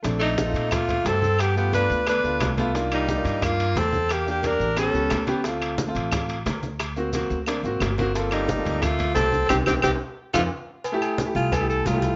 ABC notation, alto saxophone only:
X:1
M:4/4
L:1/8
Q:1/4=178
K:Bb
V:1 name="Alto saxophone"
z E3 F2 A2 | G G =B2 B3 z | z E3 F2 A2 | G G B2 A3 z |
z8 | z8 | z E3 F2 A2 | G G G z2 F z2 |
[K:F] z3 F A A F2 |]